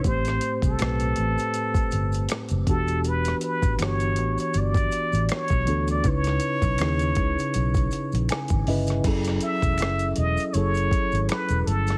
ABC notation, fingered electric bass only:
X:1
M:4/4
L:1/16
Q:"Swing 16ths" 1/4=80
K:Elyd
V:1 name="Fingered electric bass" clef=bass
=A,,,2 z =C,, B,,,2 A,,, z3 =G,,,2 z F,,, E,,,2- | E,,,2 z =A,,, =G,,,2 A,,, z G,,,2 z A,,, z B,,, =D,,2 | C,,2 z B,,, D,,2 C,, z B,,,2 z A,,, z G,,, =G,,,2 | [K:F#dor] F,,,2 z E,,, F,,,2 E,,, z F,,,2 z G,,, z E,,, =G,,,2 |]